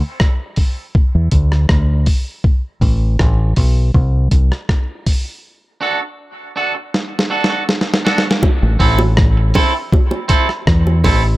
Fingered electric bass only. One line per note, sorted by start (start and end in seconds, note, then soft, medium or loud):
1.15 1.32 E2 medium
1.33 1.68 D2 medium
1.69 2.05 D2 medium
2.82 3.17 A1 loud
3.21 3.56 A1 medium
3.57 3.93 B1 medium
3.95 4.30 C2 medium
4.32 4.50 C2 medium
8.63 8.80 A1 loud
8.81 9.52 A1 medium
10.68 11.07 E2 loud
11.05 11.37 A1 medium